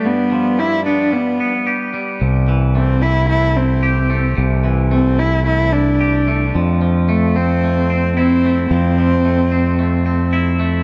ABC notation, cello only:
X:1
M:4/4
L:1/8
Q:1/4=111
K:C
V:1 name="Cello"
B,2 E D B,2 z2 | z2 C E E C3 | z2 C E E D3 | z2 A, C3 C2 |
C6 z2 |]